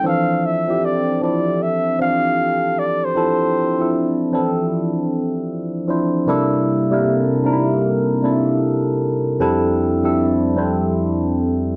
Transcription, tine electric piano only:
0.03 E3 F3 C4 D4 A4
0.68 F3 C4 D4 E4 G4
1.21 F3 C4 D4 E4 A4
1.99 E3 F3 C4 D4 G4
2.08 A4
3.15 F3 C4 D4 E4 A4
3.79 F3 C4 D4 E4 A4
4.32 E3 C4 D4 E4 A4
4.38 F3
5.88 F3 C4 D4 E4 C5
6.27 C3 G3 A#3 D4 E4 A4
6.91 C3 G3 A#3 D4 E4 A#4
7.44 C3 G3 A#3 D4 D#4 A#4
7.52 E4
8.22 C3 G3 A#3 D4 E4 A4
9.39 F2 G3 C4 D4 E4 A4
10.03 F2 G3 C4 D4 E4 A4
10.56 F2 G3 C4 D4 E4 C5

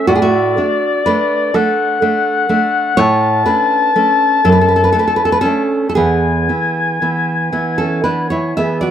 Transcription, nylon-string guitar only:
0.07 A2 F#4
0.15 G#4
0.22 A3 F#4
0.57 A3 D4
1.06 A3 D4 B4
1.54 A3 D4 A4
2.02 A3 D4
2.49 A3 D4
2.97 A2 E4 C#5
3.46 A3 C#4 D4 B4
3.96 A3 C#4
4.45 F#2 A4
4.52 B4
4.61 A4
4.68 B4
4.76 A4
4.84 B4
4.92 A3 D4 A4
4.99 B4
5.08 A4
5.16 B4
5.25 A4
5.32 B4
5.41 C#4 A4
5.45 A3 D4
5.89 A4
5.95 E2 B3 G#4
6.49 E3 B3
7.02 E3 B3
7.52 E3 B3
7.78 C#4 A4
8.04 E3 B3 D4 B4
8.30 E4 C#5
8.57 E3 B3 G#4 E5
8.81 F#4 D5

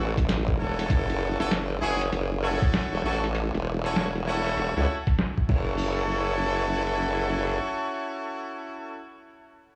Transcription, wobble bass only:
0.00 A1
0.60 E1
0.90 F#1
1.40 F#1
1.82 F#1
2.12 F#1
2.93 E1
3.04 A1
3.54 E1
3.96 E1
4.57 E1
4.77 C#2
5.49 F#1

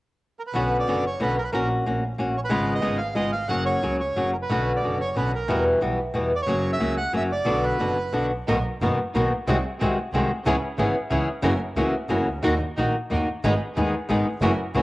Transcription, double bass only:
0.54 B1
0.88 F#1
1.21 B1
1.53 A#1
1.86 A#1
2.19 A#1
2.50 G#1
2.83 G#1
3.16 G#1
3.49 F#1
3.83 C#2
4.16 F#1
4.50 B1
4.83 F#1
5.17 B1
5.49 E2
5.82 B1
6.15 E2
6.47 F#1
6.81 C#2
7.13 F#1
7.46 B1
7.79 F#1
8.13 B1
8.47 B1
8.82 F#1
9.16 B1
9.49 C2
9.82 C2
10.13 C2
10.46 C#2
10.79 G#1
11.12 C#2
11.44 F#1
11.77 C#2
12.10 F#1
12.27 C#2
12.45 D#2
12.78 A#1
13.12 D#2
13.45 G#1
13.77 D#2
14.10 G#1
14.41 F#1
14.75 C#2

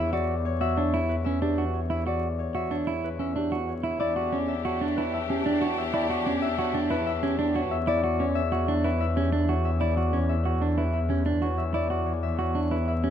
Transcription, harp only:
Already playing: G4 B4 C#5 D5 E5
0.13 D5
0.45 C#5
0.61 E5
0.76 C#5
1.09 B4
1.25 E5
1.41 G4
1.74 C#5
1.90 E5
2.07 D5
2.39 C#5
2.54 E5
2.71 C#5
3.04 B4
3.20 E5
3.37 G4
3.68 C#5
3.84 E5
4.00 D5
4.32 C#5
4.48 E5
4.65 C#5
4.97 B4
5.14 E5
5.30 G4
5.62 C#5
5.78 E5
5.93 D5
6.26 C#5
6.42 E5
6.58 C#5
6.91 B4
7.06 E5
7.23 G4
7.54 C#5
7.71 E5
7.88 D5
8.19 C#5
8.35 E5
8.52 C#5
8.84 B4
9.00 E5
9.16 G4
9.49 C#5
9.65 E5
9.80 D5
10.13 C#5
10.29 E5
10.45 C#5
10.77 B4
10.93 E5
11.09 G4
11.42 C#5
11.58 E5
11.74 D5
12.06 C#5
12.23 E5
12.39 C#5
12.71 B4
12.88 E5
13.03 G4

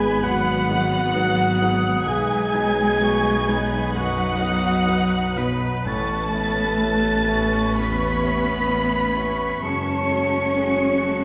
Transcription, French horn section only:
Already playing: G#4
0.22 F#4
2.08 G#4
3.94 F#4
5.37 B3
5.87 A4
7.76 B4
9.64 C#5

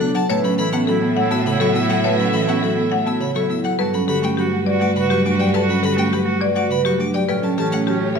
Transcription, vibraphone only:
0.00 D4
0.15 A4
0.29 B4
0.43 C#4
0.57 A4
0.72 C#4
0.87 F#4
1.02 A4
1.16 C#5
1.31 F#4
1.46 C#5
1.60 F#4
1.75 E4
1.90 A4
2.04 B4
2.19 C#4
2.33 A4
2.48 C#4
2.62 F#4
2.77 A4
2.92 C#5
3.06 F#4
3.21 C#5
3.35 F#4
3.50 E4
3.64 A4
3.79 A4
3.94 C#4
4.08 G4
4.23 C#4
4.38 F#4
4.52 G4
4.67 B4
4.81 F#4
4.96 B4
5.11 F#4
5.25 D4
5.40 G4
5.54 A4
5.69 C#4
5.83 G4
5.98 C#4
6.12 F#4
6.27 G4
6.42 B4
6.56 F#4
6.70 B4
6.85 F#4
6.99 D4
7.13 G4
7.28 A4
7.43 C#4
7.58 G4
7.72 C#4
7.87 F#4
8.01 G4
8.15 B4

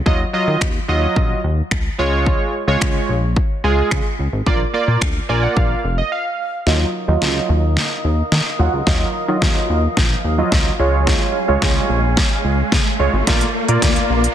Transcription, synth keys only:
0.06 F#3 F4 D#5
0.33 F#3 F4 D#5
0.88 F#3 F4 D#5
1.99 G#3 F4 C#5
2.68 G#3 F4 C#5
3.64 G#3 F4 G#4
4.46 A#3 F4 D5
4.74 A#3 F4 D5
5.29 A#3 F4 D5 G#5
5.43 F#5
5.57 F5
5.98 D#5
6.12 F5
6.66 F#3 F4 D#5
7.08 F#3 F4 D#5
8.59 F#3 F4 F#5
8.87 F#3 F4 D#5
9.28 F#3 F4 D#5
10.38 F#3 F4 D#5
10.79 G#3 F4 C#5
11.48 G#3 F4 C#5
12.99 G#3 F4 C#5
13.27 A#3 F4 D5
13.68 A#3 F4 D5

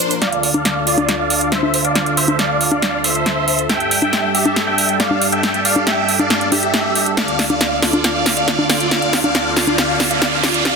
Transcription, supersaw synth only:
Already playing: C5
0.22 D5 F5
0.54 D5 F5
0.87 F4 D5
1.19 D5 F5
1.52 C5 E5
1.85 D5 F5
2.17 C5 E5
2.39 D5 F5
2.72 D5 F5
3.04 C5 E5
3.69 E5 G5
4.02 E5 G5
4.34 G4 E5
4.67 E5 G5
5.00 D5 F5
5.32 E5 G5
5.65 D5 F5
5.87 E5 G5
6.19 D5 F5
6.52 G4 E5
7.17 D5 F5
7.50 D5 F5
7.83 F4 D5
8.04 D5 F5
8.37 D5 F5
8.70 F4 D5
8.91 D5 F5
9.24 D5 F5
9.56 F4 D5
9.78 D5 F5
10.11 D5 F5
10.43 F4 D5
10.65 D5 F5

